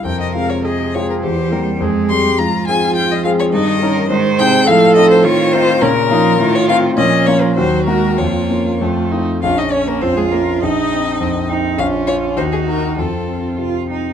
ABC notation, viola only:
X:1
M:2/4
L:1/16
Q:1/4=103
K:Fm
V:1 name="Viola"
B4 A4 | G2 B2 A2 G2 | F8 | E2 B2 c4 |
[K:Bbm] =A4 F4 | D2 E2 F4 | D4 G4 | F4 F2 E2 |
F E D B, C A, B,2 | E6 z2 | F4 G4 | F6 z2 |]